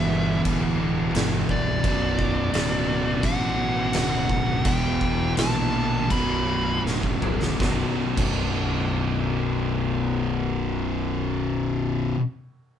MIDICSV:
0, 0, Header, 1, 7, 480
1, 0, Start_track
1, 0, Key_signature, 2, "minor"
1, 0, Tempo, 696864
1, 1269, Time_signature, 4, 2, 24, 8
1, 2715, Tempo, 722022
1, 4155, Tempo, 762389
1, 8363, End_track
2, 0, Start_track
2, 0, Title_t, "Lead electric guitar"
2, 0, Program_c, 0, 29
2, 0, Note_on_c, 0, 76, 87
2, 282, Note_off_c, 0, 76, 0
2, 1040, Note_on_c, 0, 74, 76
2, 2242, Note_on_c, 0, 78, 91
2, 2270, Note_off_c, 0, 74, 0
2, 2721, Note_off_c, 0, 78, 0
2, 2729, Note_on_c, 0, 78, 99
2, 3195, Note_off_c, 0, 78, 0
2, 3198, Note_on_c, 0, 79, 91
2, 3646, Note_off_c, 0, 79, 0
2, 3676, Note_on_c, 0, 81, 105
2, 4157, Note_on_c, 0, 83, 97
2, 4172, Note_off_c, 0, 81, 0
2, 4599, Note_off_c, 0, 83, 0
2, 8363, End_track
3, 0, Start_track
3, 0, Title_t, "Distorted electric guitar"
3, 0, Program_c, 1, 30
3, 65, Note_on_c, 1, 64, 91
3, 71, Note_on_c, 1, 59, 94
3, 77, Note_on_c, 1, 55, 81
3, 83, Note_on_c, 1, 52, 78
3, 85, Note_on_c, 1, 47, 73
3, 89, Note_on_c, 1, 40, 66
3, 1250, Note_off_c, 1, 64, 0
3, 1256, Note_off_c, 1, 55, 0
3, 1258, Note_off_c, 1, 52, 0
3, 1260, Note_off_c, 1, 47, 0
3, 1261, Note_off_c, 1, 40, 0
3, 1264, Note_on_c, 1, 35, 103
3, 1272, Note_on_c, 1, 42, 90
3, 1279, Note_on_c, 1, 47, 101
3, 1285, Note_on_c, 1, 54, 100
3, 1290, Note_on_c, 1, 62, 113
3, 1967, Note_off_c, 1, 62, 0
3, 1971, Note_off_c, 1, 35, 0
3, 1973, Note_off_c, 1, 54, 0
3, 1975, Note_off_c, 1, 42, 0
3, 1975, Note_on_c, 1, 62, 93
3, 1979, Note_off_c, 1, 47, 0
3, 1982, Note_on_c, 1, 54, 78
3, 1991, Note_on_c, 1, 47, 86
3, 2000, Note_on_c, 1, 42, 81
3, 2003, Note_on_c, 1, 35, 72
3, 2482, Note_off_c, 1, 59, 0
3, 3167, Note_off_c, 1, 62, 0
3, 3170, Note_off_c, 1, 54, 0
3, 3175, Note_off_c, 1, 47, 0
3, 3179, Note_off_c, 1, 35, 0
3, 3179, Note_off_c, 1, 42, 0
3, 3181, Note_on_c, 1, 40, 91
3, 3187, Note_on_c, 1, 47, 96
3, 3193, Note_on_c, 1, 52, 86
3, 3196, Note_on_c, 1, 55, 96
3, 3204, Note_on_c, 1, 59, 94
3, 3205, Note_on_c, 1, 64, 102
3, 3892, Note_off_c, 1, 40, 0
3, 3892, Note_off_c, 1, 64, 0
3, 3894, Note_off_c, 1, 47, 0
3, 3898, Note_off_c, 1, 52, 0
3, 3898, Note_off_c, 1, 59, 0
3, 3899, Note_off_c, 1, 55, 0
3, 3900, Note_on_c, 1, 64, 89
3, 3906, Note_on_c, 1, 59, 83
3, 3913, Note_on_c, 1, 55, 83
3, 3917, Note_on_c, 1, 52, 89
3, 3923, Note_on_c, 1, 47, 76
3, 3926, Note_on_c, 1, 40, 81
3, 4134, Note_off_c, 1, 64, 0
3, 4138, Note_off_c, 1, 59, 0
3, 4140, Note_off_c, 1, 40, 0
3, 4141, Note_off_c, 1, 55, 0
3, 4143, Note_off_c, 1, 52, 0
3, 4143, Note_on_c, 1, 35, 96
3, 4146, Note_off_c, 1, 47, 0
3, 4154, Note_on_c, 1, 42, 89
3, 4159, Note_on_c, 1, 47, 96
3, 4165, Note_on_c, 1, 54, 98
3, 4172, Note_on_c, 1, 62, 103
3, 4840, Note_off_c, 1, 35, 0
3, 4842, Note_off_c, 1, 62, 0
3, 4846, Note_off_c, 1, 42, 0
3, 4848, Note_off_c, 1, 47, 0
3, 4848, Note_off_c, 1, 54, 0
3, 4850, Note_on_c, 1, 62, 85
3, 4855, Note_on_c, 1, 54, 84
3, 4862, Note_on_c, 1, 47, 83
3, 4867, Note_on_c, 1, 42, 77
3, 4873, Note_on_c, 1, 35, 63
3, 5075, Note_off_c, 1, 35, 0
3, 5080, Note_off_c, 1, 62, 0
3, 5082, Note_on_c, 1, 35, 90
3, 5083, Note_off_c, 1, 54, 0
3, 5085, Note_off_c, 1, 42, 0
3, 5086, Note_off_c, 1, 47, 0
3, 5092, Note_on_c, 1, 42, 96
3, 5096, Note_on_c, 1, 47, 95
3, 5101, Note_on_c, 1, 54, 107
3, 5108, Note_on_c, 1, 62, 95
3, 5446, Note_off_c, 1, 35, 0
3, 5448, Note_on_c, 1, 35, 97
3, 5454, Note_off_c, 1, 42, 0
3, 5456, Note_on_c, 1, 42, 95
3, 5460, Note_off_c, 1, 47, 0
3, 5463, Note_on_c, 1, 47, 110
3, 5466, Note_off_c, 1, 54, 0
3, 5468, Note_on_c, 1, 54, 108
3, 5474, Note_off_c, 1, 62, 0
3, 5476, Note_on_c, 1, 62, 110
3, 7966, Note_off_c, 1, 35, 0
3, 7970, Note_off_c, 1, 42, 0
3, 7973, Note_off_c, 1, 47, 0
3, 7976, Note_off_c, 1, 54, 0
3, 7980, Note_off_c, 1, 62, 0
3, 8363, End_track
4, 0, Start_track
4, 0, Title_t, "Distorted electric guitar"
4, 0, Program_c, 2, 30
4, 0, Note_on_c, 2, 40, 90
4, 0, Note_on_c, 2, 47, 106
4, 0, Note_on_c, 2, 52, 107
4, 531, Note_off_c, 2, 40, 0
4, 533, Note_off_c, 2, 52, 0
4, 538, Note_off_c, 2, 47, 0
4, 541, Note_on_c, 2, 52, 89
4, 556, Note_on_c, 2, 47, 81
4, 567, Note_on_c, 2, 40, 72
4, 769, Note_off_c, 2, 40, 0
4, 771, Note_off_c, 2, 52, 0
4, 778, Note_on_c, 2, 40, 88
4, 779, Note_off_c, 2, 47, 0
4, 792, Note_on_c, 2, 47, 94
4, 801, Note_on_c, 2, 52, 90
4, 1248, Note_off_c, 2, 40, 0
4, 1255, Note_off_c, 2, 47, 0
4, 1259, Note_off_c, 2, 52, 0
4, 2464, Note_on_c, 2, 47, 84
4, 2478, Note_on_c, 2, 42, 83
4, 2491, Note_on_c, 2, 35, 77
4, 2696, Note_off_c, 2, 47, 0
4, 2700, Note_off_c, 2, 35, 0
4, 2703, Note_off_c, 2, 42, 0
4, 2708, Note_on_c, 2, 35, 91
4, 2717, Note_on_c, 2, 42, 86
4, 2732, Note_on_c, 2, 47, 102
4, 3170, Note_off_c, 2, 35, 0
4, 3175, Note_off_c, 2, 42, 0
4, 3182, Note_off_c, 2, 47, 0
4, 8363, End_track
5, 0, Start_track
5, 0, Title_t, "Distorted electric guitar"
5, 0, Program_c, 3, 30
5, 0, Note_on_c, 3, 40, 99
5, 0, Note_on_c, 3, 47, 92
5, 0, Note_on_c, 3, 52, 108
5, 297, Note_off_c, 3, 40, 0
5, 302, Note_off_c, 3, 47, 0
5, 305, Note_off_c, 3, 52, 0
5, 306, Note_on_c, 3, 40, 90
5, 313, Note_on_c, 3, 47, 88
5, 324, Note_on_c, 3, 52, 90
5, 1251, Note_off_c, 3, 40, 0
5, 1255, Note_off_c, 3, 47, 0
5, 1260, Note_off_c, 3, 52, 0
5, 2215, Note_on_c, 3, 35, 80
5, 2226, Note_on_c, 3, 42, 80
5, 2235, Note_on_c, 3, 47, 88
5, 3167, Note_off_c, 3, 35, 0
5, 3172, Note_off_c, 3, 42, 0
5, 3176, Note_off_c, 3, 47, 0
5, 8363, End_track
6, 0, Start_track
6, 0, Title_t, "Fingered electric bass"
6, 0, Program_c, 4, 33
6, 0, Note_on_c, 4, 31, 96
6, 284, Note_off_c, 4, 31, 0
6, 310, Note_on_c, 4, 26, 89
6, 762, Note_off_c, 4, 26, 0
6, 786, Note_on_c, 4, 31, 106
6, 1008, Note_off_c, 4, 31, 0
6, 1026, Note_on_c, 4, 24, 74
6, 1247, Note_off_c, 4, 24, 0
6, 1266, Note_on_c, 4, 23, 97
6, 1719, Note_off_c, 4, 23, 0
6, 1745, Note_on_c, 4, 26, 90
6, 2200, Note_off_c, 4, 26, 0
6, 2226, Note_on_c, 4, 33, 91
6, 2685, Note_off_c, 4, 33, 0
6, 2720, Note_on_c, 4, 26, 94
6, 2934, Note_off_c, 4, 26, 0
6, 2949, Note_on_c, 4, 26, 81
6, 3168, Note_off_c, 4, 26, 0
6, 3186, Note_on_c, 4, 28, 109
6, 3640, Note_off_c, 4, 28, 0
6, 3667, Note_on_c, 4, 34, 93
6, 4127, Note_off_c, 4, 34, 0
6, 4154, Note_on_c, 4, 23, 94
6, 4597, Note_off_c, 4, 23, 0
6, 4619, Note_on_c, 4, 26, 90
6, 4839, Note_off_c, 4, 26, 0
6, 4855, Note_on_c, 4, 26, 82
6, 5078, Note_off_c, 4, 26, 0
6, 5096, Note_on_c, 4, 23, 108
6, 5232, Note_off_c, 4, 23, 0
6, 5456, Note_on_c, 4, 23, 108
6, 7945, Note_off_c, 4, 23, 0
6, 8363, End_track
7, 0, Start_track
7, 0, Title_t, "Drums"
7, 310, Note_on_c, 9, 49, 58
7, 312, Note_on_c, 9, 36, 89
7, 379, Note_off_c, 9, 49, 0
7, 380, Note_off_c, 9, 36, 0
7, 790, Note_on_c, 9, 49, 61
7, 802, Note_on_c, 9, 38, 113
7, 859, Note_off_c, 9, 49, 0
7, 871, Note_off_c, 9, 38, 0
7, 1028, Note_on_c, 9, 36, 82
7, 1097, Note_off_c, 9, 36, 0
7, 1267, Note_on_c, 9, 36, 117
7, 1267, Note_on_c, 9, 49, 65
7, 1336, Note_off_c, 9, 36, 0
7, 1336, Note_off_c, 9, 49, 0
7, 1506, Note_on_c, 9, 36, 85
7, 1575, Note_off_c, 9, 36, 0
7, 1747, Note_on_c, 9, 49, 60
7, 1758, Note_on_c, 9, 38, 127
7, 1816, Note_off_c, 9, 49, 0
7, 1827, Note_off_c, 9, 38, 0
7, 2226, Note_on_c, 9, 49, 70
7, 2227, Note_on_c, 9, 36, 96
7, 2294, Note_off_c, 9, 49, 0
7, 2296, Note_off_c, 9, 36, 0
7, 2708, Note_on_c, 9, 49, 66
7, 2719, Note_on_c, 9, 38, 104
7, 2774, Note_off_c, 9, 49, 0
7, 2786, Note_off_c, 9, 38, 0
7, 2950, Note_on_c, 9, 36, 87
7, 3016, Note_off_c, 9, 36, 0
7, 3184, Note_on_c, 9, 49, 72
7, 3187, Note_on_c, 9, 36, 116
7, 3251, Note_off_c, 9, 49, 0
7, 3254, Note_off_c, 9, 36, 0
7, 3425, Note_on_c, 9, 36, 83
7, 3492, Note_off_c, 9, 36, 0
7, 3665, Note_on_c, 9, 49, 70
7, 3676, Note_on_c, 9, 38, 127
7, 3731, Note_off_c, 9, 49, 0
7, 3743, Note_off_c, 9, 38, 0
7, 4152, Note_on_c, 9, 36, 92
7, 4153, Note_on_c, 9, 49, 65
7, 4216, Note_off_c, 9, 36, 0
7, 4216, Note_off_c, 9, 49, 0
7, 4632, Note_on_c, 9, 38, 64
7, 4695, Note_off_c, 9, 38, 0
7, 4738, Note_on_c, 9, 36, 69
7, 4801, Note_off_c, 9, 36, 0
7, 4856, Note_on_c, 9, 45, 90
7, 4919, Note_off_c, 9, 45, 0
7, 4984, Note_on_c, 9, 38, 90
7, 5047, Note_off_c, 9, 38, 0
7, 5096, Note_on_c, 9, 36, 112
7, 5105, Note_on_c, 9, 38, 94
7, 5159, Note_off_c, 9, 36, 0
7, 5168, Note_off_c, 9, 38, 0
7, 5455, Note_on_c, 9, 57, 90
7, 5456, Note_on_c, 9, 36, 110
7, 5518, Note_off_c, 9, 57, 0
7, 5519, Note_off_c, 9, 36, 0
7, 8363, End_track
0, 0, End_of_file